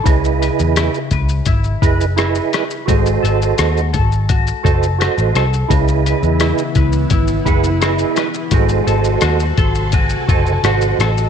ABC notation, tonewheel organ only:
X:1
M:4/4
L:1/8
Q:1/4=85
K:C#m
V:1 name="Tonewheel organ"
[EGBd]3 z2 [EGBd] [EGBd] z | [FA^Bd]3 z2 [FABd] [FABd] z | [EGBd]3 z2 [EGBf] [EGBd] z | [FA^Bd]3 ^b g [FABdg] [FABdf] d |]